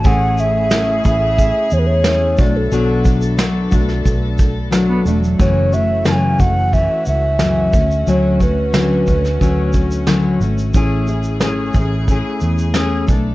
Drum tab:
SH |x-x-x-x-x-x-x-x-|x-xxx-x-x-x-x-xx|x-x-x-x-x-x-x-xx|x-x-x-xxx-xxx-xx|
SD |----o-------o---|----o--o----o---|----o-------o---|----o--o----o---|
BD |o-----o-o-----o-|--o---o-o-o-----|o-----o-o-----o-|--o---o-o-o-----|

SH |x-xxx-x-x-xxx-x-|
SD |----o-------o---|
BD |o-----o-o-----o-|